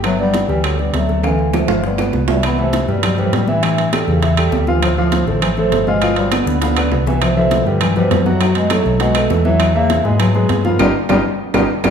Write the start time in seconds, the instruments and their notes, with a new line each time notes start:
Already playing: fingered electric bass G1
0.04 bass clarinet F#3, trombone A3, grand piano B3 B4, high bongo, high conga, high timbale, claves
0.19 bass clarinet G3, trombone B3, grand piano D4 D5, high conga
0.34 high bongo, high conga, high timbale
0.48 fingered electric bass D2, bass clarinet E3, trombone G3, grand piano G3 G4, high bongo, high conga
0.64 bass clarinet D3, trombone F#3, high bongo, high conga, high timbale, claves
0.79 bass clarinet G3, trombone B3, grand piano D4 D5, high bongo, high conga
0.93 fingered electric bass D2, bass clarinet F#3, trombone A3, high bongo, low bongo, high conga, high timbale
1.09 grand piano A3 A4, high bongo, high conga
1.23 grand piano D3 F5, bass clarinet E3, trombone A3, high bongo, high conga, high timbale, claves
1.39 high conga
1.53 bass clarinet F3, trombone A3, grand piano A3 A4, high bongo, high conga, low timbale, claves
1.68 fingered electric bass G1, grand piano F4 F5, high bongo, high conga, low timbale
1.84 bass clarinet G3, trombone B3, high bongo, high conga
1.98 grand piano B3 B4, high bongo, high conga, low timbale, claves
2.13 fingered electric bass C2, high conga, low timbale
2.28 trombone B2, bass clarinet G3, grand piano E4 E5, low bongo, high conga, low timbale
2.43 trombone E3, bass clarinet B3, high bongo, high conga, high timbale, claves
2.58 trombone C3, grand piano E3 E4 E5, bass clarinet A3, high conga
2.73 high bongo, high conga, high timbale
2.88 fingered electric bass G2, trombone B2, grand piano G3 G4 B4, bass clarinet G3, high bongo, high conga
3.03 trombone B2, bass clarinet G3, high bongo, high conga, low conga, high timbale, claves
3.18 trombone A2, bass clarinet F3, grand piano G3 G4 B4, high bongo, high conga, low conga
3.32 fingered electric bass A2, trombone B2, bass clarinet G3, high bongo, low bongo, high conga, high timbale, low timbale
3.48 trombone G2, grand piano E3 E4 E5, bass clarinet E3, high bongo, high conga
3.63 grand piano E3 E4 E5, high bongo, high conga, high timbale, claves
3.78 high conga, high timbale
3.93 grand piano G3 G4 A4, high bongo, high conga, high timbale, claves
4.07 fingered electric bass E2, trombone E2, bass clarinet C#3, high bongo, high conga
4.23 grand piano E3 E4 E5, high bongo, high conga, high timbale
4.37 grand piano G3 G4 A4, high bongo, high conga, high timbale, claves
4.52 fingered electric bass D2, high bongo, low bongo, high conga
4.67 trombone G2, bass clarinet E3, grand piano F3 F4 F5, high bongo, high conga
4.82 trombone A2, bass clarinet F3, high bongo, high conga, high timbale, claves
4.97 trombone A2, bass clarinet F3, grand piano F3 F4 F5, high conga
5.12 high bongo, high conga, high timbale
5.26 fingered electric bass A1, trombone F2, bass clarinet D3, grand piano A3 A4 C5, high bongo, high conga
5.42 trombone A2, bass clarinet E3, high bongo, high conga, low conga, high timbale, claves
5.57 trombone A2, bass clarinet F3, grand piano A3 A4 C5, high bongo, high conga
5.71 fingered electric bass G1, high bongo, low bongo, high conga, high timbale
5.86 trombone B2, grand piano F3 F4 F5, bass clarinet G#3, high bongo, high conga
6.02 grand piano F3 F4 F5, high bongo, high conga, high timbale, claves
6.16 trombone B2, bass clarinet G3, high conga, high timbale
6.32 trombone D3, bass clarinet B3, grand piano B3 B4 D5, high bongo, high conga, high timbale, claves
6.46 fingered electric bass D2, high bongo, high conga
6.61 trombone D3, grand piano F3 F4 F5, bass clarinet B3, high bongo, high conga, high timbale
6.77 grand piano B3 B4 D5, low bongo, high conga, high timbale, claves
6.91 fingered electric bass C2, high conga, low timbale
7.06 trombone G2, bass clarinet E3, grand piano E3 E4 E5, low bongo, high conga
7.21 trombone B2, bass clarinet F3, high bongo, high timbale, claves
7.36 trombone B2, grand piano D3 E4 E5, bass clarinet F3, high conga
7.51 high bongo, high conga, high timbale
7.66 trombone F2, fingered electric bass G2, bass clarinet D3, grand piano G3 G4 B4, high bongo, high conga
7.81 trombone G2, bass clarinet E3, high bongo, high conga, low conga, high timbale, claves
7.95 trombone B2, bass clarinet F3, grand piano G3 G4 B4, high bongo, high conga, low conga
8.10 fingered electric bass F#2, high bongo, low bongo, high conga, high timbale, low timbale
8.25 trombone A2, grand piano F#3 F#4 F#5, bass clarinet F#3, high bongo, high conga
8.41 grand piano F#3 F#4 F#5, high bongo, high conga, high timbale, claves
8.55 trombone B2, bass clarinet G#3, high conga, high timbale
8.70 trombone A2, bass clarinet F#3, grand piano A3 A4 C#5, high bongo, high conga, high timbale, claves
8.85 fingered electric bass B1, high bongo, high conga
9.00 trombone B2, grand piano F#3 F#4 F#5, bass clarinet G#3, high bongo, high conga, high timbale
9.15 grand piano A3 A4 B4, high bongo, high conga, high timbale, claves
9.30 fingered electric bass E2, high bongo, low bongo, high conga, low timbale
9.44 trombone B2, grand piano E3 E4 E5, bass clarinet F#3, high bongo, high conga
9.60 high bongo, high conga, high timbale, claves
9.74 trombone C#3, grand piano E3 E4 E5, bass clarinet A#3, high conga
9.90 high bongo, high conga, high timbale
10.04 fingered electric bass G#2, trombone B2, grand piano G#3 G#4 B4, bass clarinet G#3, high bongo, high conga
10.19 trombone B2, bass clarinet F#3, high bongo, high conga, low conga, high timbale, claves
10.35 grand piano G#3 G#4 B4, high bongo, high conga
10.49 fingered electric bass G2, high bongo, low bongo, high conga, high timbale, low timbale
10.64 trombone D#3, grand piano F3 F4 F5, bass clarinet B3, high bongo, high conga
10.79 fingered electric bass G1, trombone B2, bass clarinet G3, grand piano D#4 F4 G4, low bongo, high conga, high timbale, claves
11.09 fingered electric bass G1, trombone B2, bass clarinet G3, grand piano D#4 F4 G4, low bongo, high conga, high timbale, claves
11.54 fingered electric bass G1, trombone B2, bass clarinet G3, grand piano D#4 F4 G4, low bongo, high conga, high timbale, claves
11.84 fingered electric bass G1, trombone B2, bass clarinet G3, grand piano D#4 F4 G4, low bongo, high conga, high timbale, claves